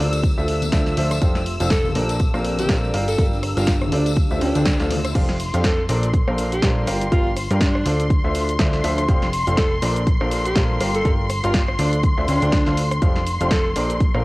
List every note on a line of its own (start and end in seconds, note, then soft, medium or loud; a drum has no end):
0.00 0.35 D2 loud
0.00 0.16 D3 medium
0.00 0.16 D4 medium
0.00 2.36 D4 medium
0.00 0.16 F4 medium
0.00 0.48 G4 medium
0.00 0.16 A4 medium
0.00 0.16 C5 medium
0.00 0.16 D5 medium
0.00 5.16 E6 medium
0.12 1.52 F4 medium
0.12 closed hi-hat medium
0.12 tambourine medium
0.23 kick loud
0.23 closed hi-hat medium
0.23 tambourine medium
0.37 0.70 D2 medium
0.37 0.63 D3 medium
0.37 0.63 D4 medium
0.37 0.63 F4 medium
0.37 0.63 A4 medium
0.37 0.63 C5 medium
0.37 1.22 E5 medium
0.37 0.63 E5 medium
0.37 tambourine soft
0.48 open hi-hat loud
0.55 1.52 C6 medium
0.62 closed hi-hat medium
0.62 tambourine medium
0.62 high conga medium
0.72 0.95 D2 loud
0.72 0.94 D3 medium
0.72 0.94 D4 medium
0.72 0.94 F4 medium
0.72 0.94 A4 medium
0.72 0.94 C5 medium
0.72 0.94 E5 loud
0.72 kick loud
0.72 snare loud
0.72 closed hi-hat medium
0.72 tambourine medium
0.86 snare soft
0.86 tambourine soft
0.97 1.20 D2 medium
0.97 1.15 F3 medium
0.97 1.15 D4 medium
0.97 1.15 F4 medium
0.97 1.15 A4 medium
0.97 1.15 C5 medium
0.97 1.15 E5 loud
0.97 open hi-hat loud
1.11 cross-stick medium
1.11 closed hi-hat medium
1.11 tambourine medium
1.21 1.58 F1 loud
1.21 1.39 F3 medium
1.21 1.39 D4 medium
1.21 1.39 G4 medium
1.21 1.39 A4 medium
1.21 1.39 C5 medium
1.21 1.39 F5 medium
1.21 kick loud
1.21 closed hi-hat medium
1.21 tambourine medium
1.35 snare soft
1.35 tambourine soft
1.44 2.36 G4 medium
1.44 open hi-hat loud
1.56 2.36 F5 medium
1.56 2.94 A5 medium
1.60 1.93 F1 medium
1.60 1.75 F3 medium
1.60 1.75 D4 medium
1.60 1.75 G4 medium
1.60 1.75 A4 medium
1.60 1.75 C5 medium
1.60 1.75 F5 loud
1.60 closed hi-hat medium
1.60 tambourine medium
1.70 1.90 A4 medium
1.70 kick loud
1.70 snare loud
1.70 closed hi-hat medium
1.70 tambourine medium
1.84 tambourine soft
1.84 high conga medium
1.95 2.31 A#1 medium
1.95 2.13 A#2 medium
1.95 3.35 C4 medium
1.95 2.13 D4 medium
1.95 2.13 A4 medium
1.95 2.13 A#4 medium
1.95 2.13 C5 medium
1.95 2.13 D5 medium
1.95 open hi-hat loud
2.09 closed hi-hat medium
2.09 tambourine medium
2.19 kick loud
2.19 closed hi-hat medium
2.19 tambourine medium
2.23 3.35 A#4 medium
2.34 2.67 A#1 medium
2.34 2.60 A#2 medium
2.34 2.60 D4 medium
2.34 2.60 A4 medium
2.34 2.60 A#4 medium
2.34 2.60 C5 medium
2.34 3.35 D5 medium
2.34 2.60 F5 medium
2.34 cross-stick medium
2.34 tambourine soft
2.45 open hi-hat loud
2.59 2.76 G4 medium
2.59 closed hi-hat medium
2.59 tambourine medium
2.59 high conga medium
2.69 2.92 A#1 loud
2.69 2.91 G3 medium
2.69 2.91 D4 medium
2.69 2.91 A4 medium
2.69 2.91 A#4 medium
2.69 2.91 C5 medium
2.69 2.91 F5 loud
2.69 kick loud
2.69 snare loud
2.69 closed hi-hat medium
2.69 tambourine medium
2.83 tambourine soft
2.94 3.16 G1 loud
2.94 3.11 G3 medium
2.94 5.15 D4 loud
2.94 3.11 D4 medium
2.94 3.11 F4 medium
2.94 3.11 G4 medium
2.94 3.11 A#4 medium
2.94 3.11 F5 loud
2.94 open hi-hat loud
3.08 4.41 G4 medium
3.08 3.25 A4 medium
3.08 closed hi-hat medium
3.08 tambourine medium
3.18 3.54 G1 loud
3.18 3.36 G3 medium
3.18 3.36 D4 medium
3.18 3.36 F4 medium
3.18 3.36 G4 medium
3.18 3.36 A#4 medium
3.18 3.36 F5 medium
3.18 3.92 A#5 medium
3.18 kick loud
3.18 closed hi-hat medium
3.18 tambourine medium
3.25 3.92 F5 medium
3.33 tambourine soft
3.43 cross-stick medium
3.43 open hi-hat loud
3.57 3.90 G1 loud
3.57 3.72 G3 medium
3.57 3.72 D4 medium
3.57 3.74 F4 medium
3.57 3.72 F4 medium
3.57 3.72 G4 medium
3.57 3.72 A#4 medium
3.57 3.72 F5 loud
3.57 closed hi-hat medium
3.57 tambourine medium
3.67 kick loud
3.67 snare loud
3.67 closed hi-hat medium
3.67 tambourine medium
3.81 cross-stick medium
3.81 tambourine soft
3.81 high conga medium
3.92 4.28 D2 medium
3.92 4.10 D3 medium
3.92 4.11 D4 medium
3.92 4.10 D4 medium
3.92 4.10 F4 medium
3.92 4.10 A4 medium
3.92 4.10 C5 medium
3.92 4.10 D5 medium
3.92 open hi-hat loud
4.06 5.15 F4 medium
4.06 closed hi-hat medium
4.06 tambourine medium
4.16 kick loud
4.16 closed hi-hat medium
4.16 tambourine medium
4.26 5.15 C6 medium
4.30 4.39 D2 medium
4.30 4.39 D3 medium
4.30 4.39 D4 medium
4.30 4.39 F4 medium
4.30 4.39 A4 medium
4.30 4.39 C5 medium
4.30 4.39 E5 medium
4.30 tambourine soft
4.41 4.53 D2 loud
4.41 4.52 D3 medium
4.41 4.90 D4 loud
4.41 4.52 D4 medium
4.41 4.52 F4 medium
4.41 4.52 A4 medium
4.41 4.52 C5 medium
4.41 5.15 E5 medium
4.41 4.52 G5 medium
4.41 open hi-hat loud
4.55 4.77 D2 medium
4.55 4.71 D3 loud
4.55 4.71 D4 medium
4.55 4.71 F4 medium
4.55 4.71 A4 medium
4.55 4.71 C5 medium
4.55 4.71 G5 loud
4.55 closed hi-hat medium
4.55 tambourine medium
4.55 high conga medium
4.65 kick loud
4.65 snare loud
4.65 closed hi-hat medium
4.65 tambourine medium
4.80 5.13 D2 loud
4.80 4.95 D3 medium
4.80 4.95 D4 medium
4.80 4.95 F4 medium
4.80 4.95 A4 medium
4.80 4.95 C5 medium
4.80 4.95 F5 loud
4.80 snare soft
4.80 tambourine soft
4.90 open hi-hat loud
4.90 high conga medium
5.04 cross-stick medium
5.04 closed hi-hat medium
5.04 tambourine medium
5.15 5.51 F1 loud
5.15 5.33 F3 medium
5.15 5.33 D4 medium
5.15 5.33 G4 medium
5.15 5.33 A4 medium
5.15 5.33 C5 medium
5.15 5.33 F5 medium
5.15 14.24 C6 medium
5.15 kick loud
5.15 closed hi-hat medium
5.15 crash loud
5.15 shaker soft
5.29 snare soft
5.40 open hi-hat loud
5.40 shaker medium
5.54 5.87 F2 medium
5.54 5.69 F3 medium
5.54 5.69 D4 medium
5.54 5.69 G4 medium
5.54 5.69 A4 medium
5.54 5.69 C5 medium
5.54 5.69 F5 loud
5.54 closed hi-hat medium
5.54 shaker soft
5.64 5.83 A4 medium
5.64 kick loud
5.64 snare loud
5.64 closed hi-hat medium
5.64 shaker soft
5.89 6.25 A#1 medium
5.89 6.06 A#2 medium
5.89 6.06 D4 medium
5.89 6.06 A4 medium
5.89 6.06 A#4 medium
5.89 6.06 C5 medium
5.89 6.06 D5 medium
5.89 open hi-hat loud
5.89 shaker medium
6.03 closed hi-hat medium
6.03 shaker soft
6.13 kick loud
6.13 closed hi-hat medium
6.13 shaker soft
6.28 6.61 A#1 loud
6.28 6.53 A#2 medium
6.28 6.53 D4 medium
6.28 6.53 A4 medium
6.28 6.53 A#4 medium
6.28 6.53 C5 medium
6.28 6.53 F5 medium
6.28 cross-stick medium
6.38 open hi-hat loud
6.38 shaker medium
6.52 6.69 G4 medium
6.52 closed hi-hat medium
6.52 shaker soft
6.62 6.85 A#1 loud
6.62 6.84 G3 loud
6.62 6.84 D4 medium
6.62 6.84 A4 medium
6.62 6.84 A#4 medium
6.62 6.84 C5 medium
6.62 6.84 F5 loud
6.62 kick loud
6.62 snare loud
6.62 closed hi-hat medium
6.62 shaker soft
6.87 7.10 G1 medium
6.87 7.05 G3 loud
6.87 7.05 D4 medium
6.87 7.05 F4 medium
6.87 7.05 G4 medium
6.87 7.05 A#4 medium
6.87 7.05 F5 loud
6.87 cross-stick medium
6.87 open hi-hat loud
6.87 shaker medium
7.01 closed hi-hat medium
7.01 shaker soft
7.12 7.48 G1 loud
7.12 7.29 G3 medium
7.12 7.29 D4 medium
7.12 7.29 F4 medium
7.12 7.31 F4 loud
7.12 7.29 G4 medium
7.12 7.29 A#4 medium
7.12 7.29 F5 medium
7.12 kick loud
7.12 closed hi-hat medium
7.12 shaker soft
7.36 cross-stick medium
7.36 open hi-hat loud
7.36 shaker medium
7.50 7.84 G2 loud
7.50 7.66 G3 medium
7.50 7.66 D4 medium
7.50 7.66 F4 medium
7.50 7.66 G4 medium
7.50 7.66 A#4 medium
7.50 7.66 F5 loud
7.50 closed hi-hat medium
7.50 shaker soft
7.61 7.91 D4 loud
7.61 kick loud
7.61 snare loud
7.61 closed hi-hat medium
7.61 shaker soft
7.75 cross-stick medium
7.86 8.21 D2 medium
7.86 8.03 D3 medium
7.86 8.03 D4 medium
7.86 8.03 F4 medium
7.86 8.03 A4 medium
7.86 8.03 C5 medium
7.86 8.03 D5 medium
7.86 open hi-hat loud
7.86 shaker medium
8.00 closed hi-hat medium
8.00 shaker soft
8.10 kick loud
8.10 closed hi-hat medium
8.10 shaker soft
8.24 8.57 D2 medium
8.24 8.50 D3 medium
8.24 8.50 D4 medium
8.24 8.50 F4 medium
8.24 8.50 A4 medium
8.24 8.50 C5 medium
8.24 8.50 E5 medium
8.35 open hi-hat loud
8.35 shaker medium
8.49 closed hi-hat medium
8.49 shaker soft
8.59 8.82 D2 loud
8.59 8.81 D3 loud
8.59 8.81 D4 medium
8.59 8.81 F4 medium
8.59 8.81 A4 medium
8.59 8.81 C5 medium
8.59 8.81 E5 loud
8.59 kick loud
8.59 snare loud
8.59 closed hi-hat medium
8.59 shaker soft
8.73 snare soft
8.84 9.06 D2 medium
8.84 9.01 F3 medium
8.84 9.01 D4 medium
8.84 9.01 F4 medium
8.84 9.01 A4 medium
8.84 9.01 C5 medium
8.84 9.01 E5 loud
8.84 open hi-hat loud
8.84 shaker medium
8.98 cross-stick medium
8.98 closed hi-hat medium
8.98 shaker soft
9.09 9.44 F1 loud
9.09 9.26 F3 medium
9.09 9.26 D4 medium
9.09 9.26 G4 medium
9.09 9.26 A4 medium
9.09 9.26 C5 medium
9.09 9.26 F5 medium
9.09 kick loud
9.09 closed hi-hat medium
9.09 shaker soft
9.22 snare soft
9.33 open hi-hat loud
9.33 shaker medium
9.47 9.80 F1 loud
9.47 9.62 F3 medium
9.47 9.62 D4 medium
9.47 9.62 G4 medium
9.47 9.62 A4 medium
9.47 9.62 C5 medium
9.47 9.62 F5 medium
9.47 closed hi-hat medium
9.47 shaker soft
9.57 9.77 A4 loud
9.57 kick loud
9.57 snare loud
9.57 closed hi-hat medium
9.57 shaker soft
9.82 10.18 A#1 loud
9.82 10.00 A#2 medium
9.82 10.00 D4 medium
9.82 10.00 A4 medium
9.82 10.00 A#4 medium
9.82 10.00 C5 medium
9.82 10.00 D5 medium
9.82 open hi-hat loud
9.82 shaker medium
9.96 closed hi-hat medium
9.96 shaker soft
10.07 kick loud
10.07 closed hi-hat medium
10.07 shaker soft
10.21 10.54 A#1 loud
10.21 10.47 A#2 medium
10.21 10.47 D4 medium
10.21 10.47 A4 medium
10.21 10.47 A#4 medium
10.21 10.47 C5 medium
10.21 10.47 F5 medium
10.21 cross-stick medium
10.31 open hi-hat loud
10.31 shaker medium
10.46 10.62 G4 medium
10.46 closed hi-hat medium
10.46 shaker soft
10.56 10.79 A#1 loud
10.56 10.78 G3 loud
10.56 10.78 D4 medium
10.56 10.78 A4 medium
10.56 10.78 A#4 medium
10.56 10.78 C5 medium
10.56 10.78 F5 loud
10.56 kick loud
10.56 snare loud
10.56 closed hi-hat medium
10.56 shaker soft
10.81 11.03 G1 medium
10.81 10.98 G3 loud
10.81 10.98 D4 medium
10.81 10.98 F4 medium
10.81 10.98 G4 medium
10.81 10.98 A#4 medium
10.81 10.98 F5 loud
10.81 cross-stick medium
10.81 open hi-hat loud
10.81 shaker medium
10.95 11.12 A4 loud
10.95 closed hi-hat medium
10.95 shaker soft
11.05 11.41 G1 loud
11.05 11.23 G3 medium
11.05 11.23 D4 medium
11.05 11.23 F4 medium
11.05 11.23 G4 medium
11.05 11.23 A#4 medium
11.05 11.23 F5 medium
11.05 kick loud
11.05 closed hi-hat medium
11.05 shaker soft
11.30 cross-stick medium
11.30 open hi-hat loud
11.30 shaker medium
11.44 11.77 G1 loud
11.44 11.59 G3 medium
11.44 11.59 D4 medium
11.44 11.61 F4 medium
11.44 11.59 F4 medium
11.44 11.59 G4 medium
11.44 11.59 A#4 medium
11.44 11.59 F5 loud
11.44 closed hi-hat medium
11.44 shaker soft
11.54 kick loud
11.54 snare loud
11.54 closed hi-hat medium
11.54 shaker soft
11.69 cross-stick medium
11.79 12.15 D2 loud
11.79 11.97 D3 medium
11.79 11.97 D4 medium
11.79 11.98 D4 medium
11.79 11.97 F4 medium
11.79 11.97 A4 medium
11.79 11.97 C5 medium
11.79 11.97 D5 medium
11.79 open hi-hat loud
11.79 shaker medium
11.93 closed hi-hat medium
11.93 shaker soft
12.04 kick loud
12.04 closed hi-hat medium
12.04 shaker soft
12.18 12.26 D2 loud
12.18 12.26 D3 medium
12.18 12.26 D4 medium
12.18 12.26 F4 medium
12.18 12.26 A4 medium
12.18 12.26 C5 medium
12.18 12.26 E5 medium
12.28 12.39 D2 loud
12.28 12.39 D3 medium
12.28 12.39 D4 medium
12.28 12.77 D4 loud
12.28 12.39 F4 medium
12.28 12.39 A4 medium
12.28 12.39 C5 medium
12.28 12.39 G5 medium
12.28 open hi-hat loud
12.28 shaker medium
12.42 12.64 D2 loud
12.42 12.57 D3 loud
12.42 12.57 D4 medium
12.42 12.57 F4 medium
12.42 12.57 A4 medium
12.42 12.57 C5 medium
12.42 12.57 G5 loud
12.42 closed hi-hat medium
12.42 shaker soft
12.52 kick loud
12.52 snare loud
12.52 closed hi-hat medium
12.52 shaker soft
12.66 13.00 D2 loud
12.66 12.82 D3 medium
12.66 12.82 D4 medium
12.66 12.82 F4 medium
12.66 12.82 A4 medium
12.66 12.82 C5 medium
12.66 12.82 F5 medium
12.66 snare soft
12.77 open hi-hat loud
12.77 shaker medium
12.91 cross-stick medium
12.91 closed hi-hat medium
12.91 shaker soft
13.02 13.38 F1 loud
13.02 13.19 F3 medium
13.02 13.19 D4 medium
13.02 13.19 G4 medium
13.02 13.19 A4 medium
13.02 13.19 C5 medium
13.02 13.19 F5 medium
13.02 kick loud
13.02 closed hi-hat medium
13.02 shaker soft
13.16 snare soft
13.27 open hi-hat loud
13.27 shaker medium
13.41 13.74 F1 loud
13.41 13.56 F3 medium
13.41 13.56 D4 medium
13.41 13.56 G4 medium
13.41 13.56 A4 medium
13.41 13.56 C5 medium
13.41 13.56 F5 medium
13.41 closed hi-hat soft
13.41 shaker soft
13.51 13.70 A4 medium
13.51 kick loud
13.51 snare loud
13.51 closed hi-hat medium
13.51 shaker soft
13.76 14.12 A#1 medium
13.76 13.93 A#2 medium
13.76 13.93 D4 medium
13.76 13.93 A4 medium
13.76 13.93 A#4 medium
13.76 13.93 C5 medium
13.76 13.93 D5 loud
13.76 open hi-hat loud
13.76 shaker medium
13.90 closed hi-hat medium
13.90 shaker soft
14.00 kick loud
14.00 closed hi-hat medium
14.00 shaker soft
14.14 14.24 A#1 loud
14.14 14.24 A#2 medium
14.14 14.24 D4 medium
14.14 14.24 A4 medium
14.14 14.24 A#4 medium
14.14 14.24 C5 medium
14.14 14.24 F5 medium
14.14 cross-stick medium